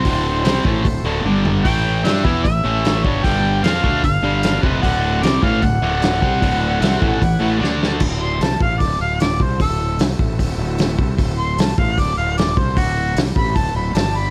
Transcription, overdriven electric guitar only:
X:1
M:4/4
L:1/8
Q:1/4=151
K:Dmix
V:1 name="Overdriven electric guitar" clef=bass
[D,,A,,D,]2 [C,G,C] [A,,E,A,] [D,,A,,] [D,,A,,D,] [G,,D,G,]2 | [A,,E,A,]2 [G,DG] [E,B,E] [A,,E,] [A,,E,A,]2 [G,,D,G,] | [G,,D,G,]2 [=F,C=F] [D,A,D] [G,,D,] [G,,D,G,]2 [=F,,C,F,] | [D,,A,,D,]2 [C,G,C] [A,,E,A,] [D,,A,,] [D,,A,,D,]2 [C,G,C] |
[D,,A,,D,]2 [C,G,C] [A,,E,A,] [A,,E,] [A,,E,A,] [D,A,D]2 | z8 | z8 | z8 |
z8 |]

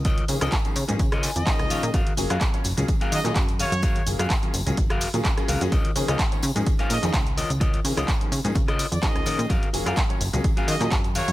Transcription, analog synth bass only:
X:1
M:4/4
L:1/16
Q:"Swing 16ths" 1/4=127
K:Db
V:1 name="Analog synth bass" clef=bass
D,, z D, D,, z2 D, A,, D,2 z F,, z D,, B,, B,, | G,, z G,,, G,, z2 G,,, D,, z2 E, B,, G,,2 z G,,- | G,, z G,,, G,, z2 G,,, D,, G,,,2 z B,, z2 D,, G,, | D,, z D, D,, z2 D, A,, z2 B,, F,, D,,2 z D,,- |
D,, z D, D,, z2 D, A,, D,2 z F,, z D,, B,, B,, | G,, z G,,, G,, z2 G,,, D,, z2 E, B,, G,,2 z G,, |]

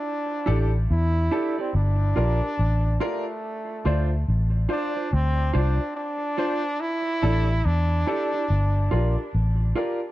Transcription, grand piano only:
X:1
M:4/4
L:1/16
Q:"Swing 16ths" 1/4=71
K:Dm
V:1 name="Grand piano"
z2 [DGA] z3 [DGA] z3 [FGB] [GB] z2 [FGB] z | z2 [DFc] z3 [DFc] z3 [DFc] [Fc] z2 [DFc] z | z2 [DGA] z3 [DGA] z3 [FGB] [GB] z2 [FGB] z |]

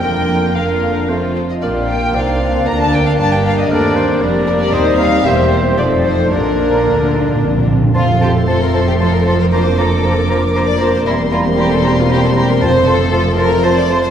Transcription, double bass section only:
X:1
M:3/4
L:1/8
Q:1/4=116
K:Bb
V:1 name="Double bass section" clef=bass
F,,,4- F,,, z | B,,,2 C,,2 D,,2 | G,,,2 E,,2 F,,,2 | E,,2 =E,,,2 F,,,2 |
B,,,2 D,,2 C,,2 | [K:F] F,,,6- | F,,,6 | E,,,6 |
F,,,6 |]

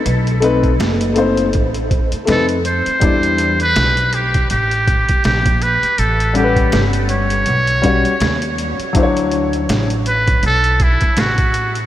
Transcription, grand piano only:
X:1
M:4/4
L:1/8
Q:"Swing 16ths" 1/4=81
K:Ephr
V:1 name="Grand piano"
z [A,C^DB] z [A,CDc] z2 [A,CDB] z | [G,DEd] z6 z | z [G,^CAB^f]3 z [G,C^F^c] z2 | [^F,DEc^c]3 z4 z |]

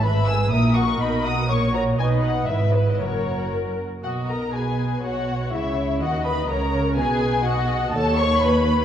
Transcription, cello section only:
X:1
M:2/4
L:1/8
Q:1/4=122
K:B
V:1 name="Cello section" clef=bass
G,,2 A,,2 | B,,2 A,,2 | B,,2 G,,2 | F,,3 z |
B,,4 | B,,2 C,2 | D,2 C,2 | B,,4 |
[K:Bmix] D,,4 |]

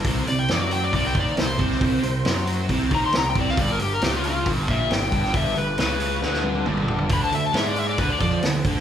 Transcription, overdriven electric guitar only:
X:1
M:4/4
L:1/8
Q:1/4=136
K:C
V:1 name="Overdriven electric guitar" clef=bass
C, C, ^F,2 C, _E, C, C, | C, C, ^F,2 C, _E, C, C, | G,, G,, ^C,2 G,, _B,, G,, G,, | G,, G,, ^C,2 D,2 G,,2 |
D, D, _A,2 D, F, D, D, |]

